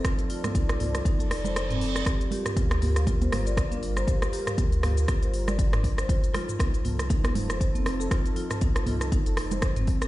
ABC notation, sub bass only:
X:1
M:4/4
L:1/8
Q:"Swing 16ths" 1/4=119
K:Fmix
V:1 name="Sub bass" clef=bass
F,,, z C,,2 F,,, F,,,3 | G,,, z D,,3 G,,,3 | G,,, z D,,2 G,,,3 B,,, | F,,, z C,,3 F,,,3 |
F,,, z C,,2 F,,,4 |]